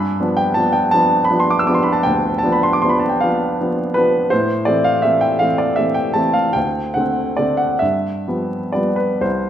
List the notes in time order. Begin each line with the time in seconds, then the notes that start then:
Already playing: G2 B5
0.20 F3 B3 D4
0.37 G5
0.54 F3 B3 D4 A5
0.72 G5
0.91 F3 B3 D4 A5
1.25 B5
1.30 F3 B3 D4
1.40 C6
1.50 D6
1.59 E6
1.67 F3 B3 D4 D6
1.74 C6
1.83 B5
1.93 A5
2.03 D2 G5
2.38 A5
2.43 F3 B3 D4
2.52 B5
2.63 C6
2.73 D6
2.82 F3 B3 D4 C6
2.89 B5
2.99 A5
3.09 G5
3.20 F3 B3 D4 F5
3.61 F3 B3 D4
3.94 F3 B3 D4 B4
4.30 A2 C5
4.65 E3 A3 C4 D5
4.84 F5
5.02 E3 A3 C4 E5
5.21 G5
5.39 E3 A3 C4 F5
5.58 D5
5.76 E3 A3 C4 E5
5.94 G5
6.13 E3 A3 C4 A5
6.33 F5
6.53 D2 G5
6.94 D3 A3 C4 F#5
7.37 D3 A3 C4 D5
7.57 F#5
7.79 G2 E5
8.27 F3 G3 B3
8.72 F3 G3 B3 D5
8.96 B4
9.21 C2 C5